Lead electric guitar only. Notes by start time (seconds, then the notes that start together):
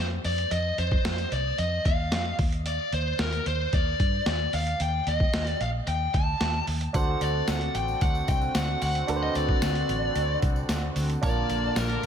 0.25 D5
0.52 D#5
0.79 C5
1.32 D5
1.59 D#5
1.86 F5
2.66 D5
2.94 C5
3.21 A#4
3.47 C5
3.74 D5
4.28 D5
4.54 F5
4.81 G5
5.08 D#5
5.48 D5
5.62 F5
5.88 G5
6.15 A5
6.95 F#5
7.22 D5
7.49 F#5
7.76 G5
8.02 F#5
8.29 G5
8.56 F#5
8.83 F#5
9.23 D#5
9.36 D5
11.24 D5
11.77 A#4